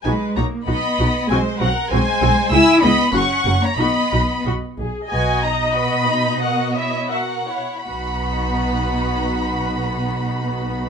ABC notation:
X:1
M:2/4
L:1/16
Q:1/4=91
K:B
V:1 name="Violin section"
g2 a2 b4 | g2 f2 g4 | e'2 b2 c'3 a | b4 z4 |
g2 a2 b4 | f2 e2 f4 | b8- | b8 |]
V:2 name="Violin section"
B2 c2 d4 | ^B2 A2 B4 | g2 d2 f3 c | d4 z4 |
[FB]2 [Dd]2 [FB]2 [Dd]2 | [FA]2 [Ec]2 [FA]2 [Ec]2 | [Ff]8- | [Ff]8 |]
V:3 name="Viola section"
[DF]2 [DF]2 [DF]2 [DF]2 | [^B,F]2 [B,F]2 [B,F]2 [B,F]2 | [G,E]2 [G,E]2 [A,F]2 [A,F]2 | [DF]2 [DF]2 F2 G2 |
d8- | d4 e2 z2 | [B,D]8- | [B,D]8 |]
V:4 name="Cello section"
G,2 A,2 B,4 | G,2 F,2 G,4 | E2 B,2 C3 A, | B,4 z4 |
B,,8- | B,,6 z2 | B,,8- | B,,8 |]
V:5 name="Double bass section" clef=bass
B,,,2 B,,,2 B,,,2 B,,,2 | B,,,2 B,,,2 B,,,2 B,,,2 | C,,2 C,,2 F,,,2 F,,,2 | B,,,2 B,,,2 B,,,2 B,,,2 |
B,,,4 z4 | z8 | B,,,8- | B,,,8 |]